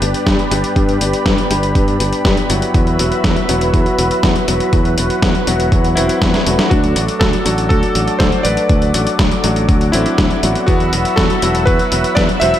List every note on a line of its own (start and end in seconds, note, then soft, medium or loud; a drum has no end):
0.00 0.13 G1 medium
0.00 0.48 G2 medium
0.00 0.48 G3 medium
0.00 0.48 B3 medium
0.00 0.48 D4 medium
0.00 2.71 G4 medium
0.00 0.48 G4 medium
0.00 2.71 B4 medium
0.00 2.71 D5 medium
0.00 6.67 B5 medium
0.00 closed hi-hat medium
0.14 closed hi-hat soft
0.27 0.37 G2 loud
0.27 kick loud
0.27 snare loud
0.27 closed hi-hat medium
0.39 closed hi-hat soft
0.51 0.62 G1 loud
0.51 0.98 G2 medium
0.51 0.98 G3 medium
0.51 0.98 B3 medium
0.51 0.98 D4 medium
0.51 0.98 G4 loud
0.51 closed hi-hat medium
0.64 closed hi-hat soft
0.76 0.98 G2 loud
0.76 kick loud
0.76 closed hi-hat medium
0.89 closed hi-hat soft
1.01 1.12 G1 medium
1.01 1.48 G2 medium
1.01 1.48 G3 medium
1.01 1.48 B3 medium
1.01 1.48 D4 medium
1.01 1.48 G4 medium
1.01 closed hi-hat medium
1.13 closed hi-hat soft
1.26 1.37 G2 medium
1.26 kick loud
1.26 snare loud
1.26 closed hi-hat medium
1.38 closed hi-hat soft
1.50 1.72 G1 medium
1.50 1.97 G2 loud
1.50 1.97 G3 medium
1.50 1.97 B3 medium
1.50 1.97 D4 medium
1.50 1.97 G4 loud
1.50 closed hi-hat medium
1.63 closed hi-hat soft
1.75 1.97 G2 medium
1.75 kick loud
1.75 closed hi-hat medium
1.88 closed hi-hat soft
2.00 2.11 G1 medium
2.00 2.47 G2 medium
2.00 2.47 G3 medium
2.00 2.47 B3 medium
2.00 2.47 D4 medium
2.00 2.47 G4 medium
2.00 closed hi-hat medium
2.13 closed hi-hat soft
2.25 2.36 G2 medium
2.25 kick loud
2.25 snare loud
2.25 closed hi-hat medium
2.37 closed hi-hat soft
2.50 2.61 G1 loud
2.50 2.96 F#3 medium
2.50 2.96 B3 medium
2.50 2.96 E4 medium
2.50 2.96 F#4 loud
2.50 closed hi-hat medium
2.62 closed hi-hat soft
2.74 2.96 E2 loud
2.74 6.67 F#4 medium
2.74 6.67 B4 medium
2.74 4.71 E5 medium
2.74 kick loud
2.74 closed hi-hat medium
2.87 closed hi-hat soft
2.99 3.10 E1 medium
2.99 3.46 F#3 medium
2.99 3.46 B3 medium
2.99 3.46 E4 medium
2.99 3.46 F#4 medium
2.99 closed hi-hat medium
3.12 closed hi-hat soft
3.24 3.35 E2 medium
3.24 kick loud
3.24 snare loud
3.24 closed hi-hat medium
3.37 closed hi-hat soft
3.49 3.71 E1 medium
3.49 3.96 F#3 loud
3.49 3.96 B3 medium
3.49 3.96 E4 medium
3.49 3.96 F#4 loud
3.49 closed hi-hat medium
3.61 closed hi-hat soft
3.74 3.85 E2 medium
3.74 kick loud
3.74 closed hi-hat medium
3.86 closed hi-hat soft
3.98 4.09 E1 medium
3.98 4.45 F#3 medium
3.98 4.45 B3 medium
3.98 4.45 E4 medium
3.98 4.45 F#4 medium
3.98 closed hi-hat medium
4.11 closed hi-hat soft
4.23 4.34 E2 loud
4.23 kick loud
4.23 snare loud
4.23 closed hi-hat medium
4.36 closed hi-hat soft
4.48 4.59 E1 loud
4.48 4.95 F#3 medium
4.48 4.95 B3 medium
4.48 4.95 E4 medium
4.48 4.95 F#4 loud
4.48 closed hi-hat medium
4.60 closed hi-hat soft
4.73 4.95 E2 loud
4.73 6.69 F#5 medium
4.73 kick loud
4.73 closed hi-hat medium
4.85 closed hi-hat soft
4.98 5.09 E1 medium
4.98 5.44 F#3 medium
4.98 5.44 B3 medium
4.98 5.44 E4 medium
4.98 5.44 F#4 medium
4.98 closed hi-hat medium
5.10 closed hi-hat soft
5.22 5.33 E2 medium
5.22 kick loud
5.22 snare loud
5.22 closed hi-hat medium
5.35 closed hi-hat soft
5.47 5.69 E1 medium
5.47 5.94 F#3 loud
5.47 5.94 B3 medium
5.47 5.94 E4 medium
5.47 5.94 F#4 loud
5.47 closed hi-hat medium
5.60 closed hi-hat soft
5.72 5.94 E2 medium
5.72 kick loud
5.72 closed hi-hat medium
5.84 closed hi-hat soft
5.95 6.08 E1 medium
5.95 6.43 F#3 medium
5.95 6.68 C4 medium
5.95 6.73 E4 medium
5.95 6.43 E4 medium
5.95 6.43 F#4 medium
5.95 6.43 B4 medium
5.95 closed hi-hat medium
6.09 closed hi-hat soft
6.22 6.33 E2 medium
6.22 kick loud
6.22 snare loud
6.22 closed hi-hat medium
6.34 snare medium
6.34 closed hi-hat soft
6.46 6.57 E1 loud
6.46 6.93 F#3 medium
6.46 6.93 A3 medium
6.46 6.93 D4 medium
6.46 6.93 F#4 loud
6.46 closed hi-hat medium
6.59 snare loud
6.59 closed hi-hat soft
6.70 6.93 D2 loud
6.70 7.18 D4 medium
6.70 7.17 F#4 medium
6.70 10.64 A4 medium
6.70 10.64 D5 medium
6.70 12.60 F#5 medium
6.70 10.64 D6 medium
6.70 kick loud
6.70 closed hi-hat medium
6.84 closed hi-hat soft
6.96 7.07 A1 medium
6.96 7.43 F#3 medium
6.96 7.43 A3 medium
6.96 7.43 D4 medium
6.96 7.43 F#4 medium
6.96 closed hi-hat medium
7.08 closed hi-hat soft
7.20 7.32 D2 medium
7.20 7.67 F#4 medium
7.20 7.68 A4 medium
7.20 kick loud
7.20 snare loud
7.20 closed hi-hat medium
7.33 closed hi-hat soft
7.46 7.67 A1 medium
7.46 7.92 F#3 loud
7.46 7.92 A3 medium
7.46 7.92 D4 medium
7.46 7.92 F#4 loud
7.46 closed hi-hat medium
7.58 closed hi-hat soft
7.69 7.81 D2 medium
7.69 8.17 F#4 medium
7.69 8.16 A4 loud
7.69 kick loud
7.69 closed hi-hat medium
7.83 closed hi-hat soft
7.95 8.06 A1 medium
7.95 8.42 F#3 medium
7.95 8.42 A3 medium
7.95 8.42 D4 medium
7.95 8.42 F#4 medium
7.95 closed hi-hat medium
8.08 closed hi-hat soft
8.19 8.31 D2 loud
8.19 8.43 A4 medium
8.19 8.45 C5 loud
8.19 kick loud
8.19 snare loud
8.19 closed hi-hat medium
8.32 closed hi-hat soft
8.43 8.56 A1 loud
8.43 8.91 F#3 medium
8.43 8.91 A3 medium
8.43 8.91 D4 medium
8.43 8.91 F#4 loud
8.43 9.16 B4 medium
8.43 9.14 D5 loud
8.43 closed hi-hat medium
8.57 closed hi-hat soft
8.69 8.91 D2 loud
8.69 kick loud
8.69 closed hi-hat medium
8.82 closed hi-hat soft
8.94 9.05 A1 medium
8.94 9.41 F#3 medium
8.94 9.41 A3 medium
8.94 9.41 D4 medium
8.94 9.41 F#4 medium
8.94 closed hi-hat medium
9.07 closed hi-hat soft
9.19 9.30 D2 medium
9.19 kick loud
9.19 snare loud
9.19 closed hi-hat medium
9.31 closed hi-hat soft
9.44 9.66 A1 medium
9.44 9.91 F#3 loud
9.44 9.91 A3 medium
9.44 9.91 D4 medium
9.44 9.91 F#4 loud
9.44 closed hi-hat medium
9.56 closed hi-hat soft
9.69 9.90 D2 medium
9.69 kick loud
9.69 closed hi-hat medium
9.81 closed hi-hat soft
9.92 10.04 A1 medium
9.92 10.40 F#3 medium
9.92 10.40 A3 medium
9.92 10.64 C4 medium
9.92 10.40 D4 medium
9.92 10.69 E4 medium
9.92 10.40 F#4 medium
9.92 closed hi-hat medium
10.06 closed hi-hat soft
10.18 10.29 D2 medium
10.18 kick loud
10.18 snare loud
10.18 closed hi-hat medium
10.31 closed hi-hat soft
10.43 10.54 A1 loud
10.43 10.90 F#3 medium
10.43 10.90 B3 medium
10.43 10.90 E4 medium
10.43 10.90 F#4 loud
10.43 closed hi-hat medium
10.55 closed hi-hat soft
10.66 10.90 E2 loud
10.66 11.14 B3 medium
10.66 11.13 F#4 loud
10.66 12.60 E5 medium
10.66 12.60 B5 medium
10.66 12.60 E6 medium
10.66 kick loud
10.66 closed hi-hat medium
10.80 closed hi-hat soft
10.93 11.04 E1 medium
10.93 11.39 F#3 medium
10.93 11.39 B3 medium
10.93 11.39 E4 medium
10.93 11.39 F#4 medium
10.93 closed hi-hat medium
11.05 closed hi-hat soft
11.16 11.28 E2 medium
11.16 11.64 F#4 medium
11.16 11.63 A4 loud
11.16 kick loud
11.16 snare loud
11.16 closed hi-hat medium
11.30 closed hi-hat soft
11.42 11.64 E1 medium
11.42 11.89 F#3 loud
11.42 11.89 B3 medium
11.42 11.89 E4 medium
11.42 11.89 F#4 loud
11.42 closed hi-hat medium
11.55 closed hi-hat soft
11.66 11.78 E2 loud
11.66 12.14 F#4 medium
11.66 12.16 B4 loud
11.66 kick loud
11.66 closed hi-hat medium
11.79 closed hi-hat soft
11.92 12.03 E1 medium
11.92 12.39 F#3 medium
11.92 12.38 B3 medium
11.92 12.39 E4 medium
11.92 12.38 F#4 medium
11.92 closed hi-hat medium
12.04 closed hi-hat soft
12.15 12.28 E2 loud
12.15 12.23 B4 medium
12.15 12.21 D5 loud
12.15 kick loud
12.15 snare loud
12.15 closed hi-hat medium
12.29 closed hi-hat soft
12.40 12.52 E1 loud
12.40 12.60 F#3 medium
12.40 12.60 E4 medium
12.40 12.60 F#4 loud
12.40 12.60 C5 medium
12.40 12.60 E5 loud
12.40 closed hi-hat medium
12.54 closed hi-hat soft